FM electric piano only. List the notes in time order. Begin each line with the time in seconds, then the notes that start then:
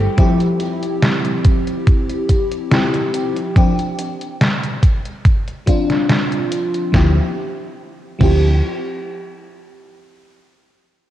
Already playing: G3 C4 E4 G4
0.17 F3 C4 E4 G4
2.71 F3 C4 E4 G4
3.56 F3 C4 D4 G4
5.66 F3 C4 D4 F4
6.92 F3 C4 E4
6.96 G4
8.19 F3 C4 E4
8.23 G4